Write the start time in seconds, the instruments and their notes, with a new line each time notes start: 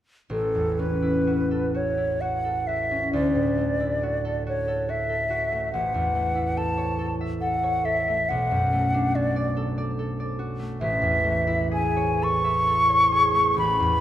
0.30 harp A1, flute A4
0.55 harp E2
0.79 harp C#4, flute B4
1.02 harp E4
1.27 harp F#4
1.51 harp A4
1.74 harp F#4, flute C#5
1.98 harp E4
2.21 harp F#4, flute F#5
2.45 harp A4
2.67 harp F#4, flute E5
2.91 harp C#4
3.13 harp D2, flute D5
3.35 harp A2
3.58 harp A3
3.80 harp E4
4.03 harp F#4
4.25 harp A4
4.47 harp F#4, flute C#5
4.68 harp A4
4.89 harp F#4, flute E5
5.09 harp A4
5.30 harp F#4
5.52 harp A3
5.73 harp A1, flute F#5
5.94 harp E2
6.15 harp A3
6.35 harp E4
6.57 harp A4, flute A5
6.77 harp C#5
6.99 harp A4
7.21 harp E5
7.41 harp A4, flute F#5
7.64 harp C#5
7.85 harp A4, flute E5
8.08 harp A3
8.29 harp B1, flute F#5
8.51 harp F#2
8.73 harp A3
8.94 harp D4
9.15 harp F#4, flute D5
9.36 harp D5
9.57 harp A4
9.78 harp D5
9.99 harp A4
10.20 harp D5
10.39 harp F#4
10.59 harp A3
10.81 harp A1, flute E5
11.02 harp E2
11.24 harp A3
11.47 harp E4
11.71 harp G#4, flute G#5
11.96 harp C#5
12.22 harp A4, flute C#6
12.44 harp E5
12.67 harp A4
12.89 harp C#5
13.12 harp G#4
13.34 harp A3
13.57 harp A1, flute B5
13.80 harp E2